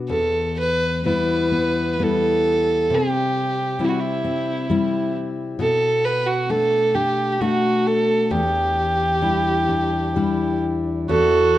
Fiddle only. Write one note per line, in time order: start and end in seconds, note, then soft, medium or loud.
0.09 0.53 A4 medium
0.59 1.02 B4 medium
1.07 1.93 B4 medium
1.93 2.05 B4 medium
2.03 2.96 A4 medium
2.94 3.86 G4 medium
3.84 3.90 E4 soft
3.88 4.01 F#4 soft
3.99 5.17 E4 medium
5.61 6.06 A4 medium
6.05 6.28 B4 medium
6.26 6.52 F#4 medium
6.50 6.96 A4 medium
6.94 7.32 G4 medium
7.32 7.42 G4 soft
7.40 7.88 F#4 medium
7.87 8.32 A4 medium
8.31 10.63 G4 medium
11.10 11.58 A4 medium